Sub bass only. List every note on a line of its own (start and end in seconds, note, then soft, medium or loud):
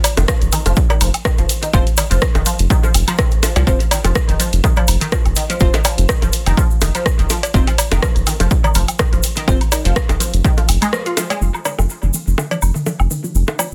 0.17 0.25 F1 loud
0.42 0.49 F1 medium
0.66 0.73 F1 medium
1.01 1.10 F1 medium
1.38 1.45 F1 medium
1.73 1.82 F1 loud
2.11 2.18 F1 loud
2.35 2.42 F1 medium
2.59 2.66 F1 loud
2.94 3.03 F1 medium
3.56 3.63 C2 loud
3.67 3.76 F1 loud
4.04 4.12 F1 loud
4.29 4.36 F1 medium
4.53 4.60 F1 medium
4.88 4.97 F1 medium
5.25 5.33 F1 loud
5.61 5.69 F1 loud
5.98 6.05 F1 loud
6.22 6.29 F1 medium
6.46 6.54 F1 loud
6.82 6.90 F1 loud
7.19 7.26 F1 medium
7.54 7.63 F1 loud
7.92 7.99 F1 loud
8.16 8.23 F1 medium
8.40 8.47 F1 medium
8.75 8.84 F1 medium
9.13 9.20 F1 medium
9.48 9.56 F1 medium
9.85 9.92 F1 loud
10.09 10.16 F1 medium
10.33 10.41 F1 loud
10.69 10.77 F1 loud
11.41 11.50 F1 medium
11.79 11.86 F1 loud
12.03 12.10 F1 medium
12.27 12.34 F1 medium
12.62 12.71 F1 medium
13.00 13.07 F1 medium
13.35 13.43 F1 medium